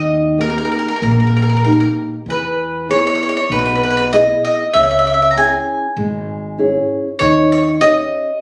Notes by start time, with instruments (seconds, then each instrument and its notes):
Already playing: upright bass D#2, nylon-string guitar D#3, mandolin D#5
0.38 nylon-string guitar A#3 D#4 G4, mandolin A#4
0.50 mandolin A#4
0.58 mandolin A#4
0.65 mandolin A#4
0.72 mandolin A#4
0.79 mandolin A#4
0.88 mandolin A#4
0.96 mandolin A#4
1.02 upright bass A#1, nylon-string guitar A#3, mandolin A#4
1.11 mandolin A#4
1.20 mandolin A#4
1.27 mandolin A#4
1.37 mandolin A#4
1.42 mandolin A#4
1.49 mandolin A#4
1.57 mandolin A#4
1.64 nylon-string guitar A#3 D#4 G4, mandolin A#4
1.72 mandolin A#4
1.80 mandolin A#4
2.26 upright bass E2, nylon-string guitar E3
2.30 mandolin B4
2.89 nylon-string guitar B3 E4 G#4, mandolin C#5
2.98 mandolin C#5
3.07 mandolin C#5
3.15 mandolin C#5
3.23 mandolin C#5
3.29 mandolin C#5
3.37 mandolin C#5
3.50 upright bass B1, nylon-string guitar B2, mandolin B4
3.59 mandolin B4
3.66 mandolin B4
3.75 mandolin B4
3.83 mandolin B4
3.90 mandolin B4
3.97 mandolin B4
4.13 nylon-string guitar B3 E4 G#4, mandolin D#5
4.45 mandolin D#5
4.74 upright bass C#2, nylon-string guitar C#3, mandolin E5
4.91 mandolin E5
4.99 mandolin E5
5.07 mandolin E5
5.14 mandolin E5
5.22 mandolin E5
5.31 mandolin A#5
5.36 nylon-string guitar C#4 E4 G#4, mandolin G#5
5.97 upright bass G#1, nylon-string guitar G#3
6.58 nylon-string guitar C#4 E4 G#4
7.19 upright bass D#2, nylon-string guitar D#3, mandolin C#5
7.52 mandolin C#5
7.81 nylon-string guitar C#4 D#4 G4, mandolin D#5